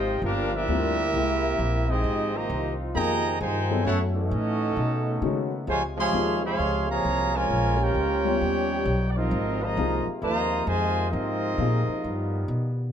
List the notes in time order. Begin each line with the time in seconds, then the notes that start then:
Already playing: G#1 C3 F3 G#3 A#3 C4 D#4 F4 G4 C5 D#5 G5
0.22 G1 D3 G3 A#3 D4 F4 G4 A#4 F5
0.52 F3 A#3 D4 E4 G4 A#4 E5
0.68 D2 G3 C4 F4 A#4
1.13 C2 C3 G#3 A#3 C4 E4 G4
1.59 A#1
1.89 G#3 C4 D#4 G4 G#4 D#5
2.04 G#1 F3 D#4 F4
2.35 C3 D#3 A#3 G4 C5 D#5 A#5
2.50 C2
2.94 F2 C3 D#3 F3 A#3 D#4 G#4 D#5 G5 A#5
3.41 G2 C3 D#3 D#4 G#4 C5 G5 G#5
3.71 F#3 B3 E4 A4
3.84 F#2 E3 A3 C#4 E4 F#4 A4 C#5 F#5
4.13 E3 A3 C#4 D#4 F#4 A4 D#5
4.31 A2
4.75 B2 C#3 B3 D#4
5.22 C#3 D#3 G#3 C#4 F#4
5.67 C#2 C3 F3 G#3 F4 C5 C#5 G#5
5.97 C3 F3 G#3 G#4 C#5 F5 C6
6.13 D#2 F3 A#3 D#4 G#4
6.43 C3 F3 G#3 G#4 C#5 F5 C6
6.59 C#2
6.88 C3 F3 A#3 G#4 C#5 F5 A#5
7.05 C2
7.33 C#3 F3 G#3 F4 A#4 C#5 G#5
7.50 A#1 A#3
7.77 G#3 C#4 G4
7.82 F4 A#4 C#5 G5
7.95 C#2
8.25 G3 B3 C#4 F4
8.39 D#2 G3 B3 D#4
8.85 B1
9.09 D5
9.16 F3 C4 D#4 F4 A#4 D#5
9.31 G#1 C3 G#3 A#3 F4
9.63 D#3 F3 A#3 F4 C5 D#5 A#5
9.77 C2 F3 A#3 D#4 G#4
10.07 muted upright bass stroke
10.22 D#2 D#3 F3 A#3 F4 C5 D#5 A#5
10.67 F2 D#3 F3 G#3 F4 C5 D#5 G#5
11.10 G#2 F3 C4 D#4 F4 A#4 D#5
11.58 A#2 F3 A#3 D#4 G#4
11.88 muted upright bass stroke
12.03 G2 D#3 G3 B3
12.48 B2